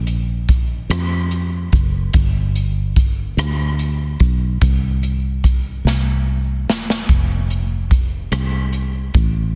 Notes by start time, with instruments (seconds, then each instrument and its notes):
Already playing: fingered electric bass A#1
0.07 closed hi-hat
0.49 kick, closed hi-hat
0.90 fingered electric bass F2, cross-stick, closed hi-hat
1.31 closed hi-hat
1.73 fingered electric bass F#1, kick, closed hi-hat
2.13 fingered electric bass G1, kick, closed hi-hat
2.56 closed hi-hat
2.96 kick, closed hi-hat
3.37 fingered electric bass D2, cross-stick, closed hi-hat
3.79 closed hi-hat
4.20 fingered electric bass B1, kick, closed hi-hat
4.61 fingered electric bass C2, kick, closed hi-hat
5.03 closed hi-hat
5.44 kick, closed hi-hat
5.85 fingered electric bass C2, snare
6.67 fingered electric bass E1, snare
6.90 snare
7.09 fingered electric bass F1, kick, closed hi-hat
7.50 closed hi-hat
7.91 kick, closed hi-hat
8.32 fingered electric bass C2, cross-stick, closed hi-hat
8.73 closed hi-hat
9.14 fingered electric bass A1, kick, closed hi-hat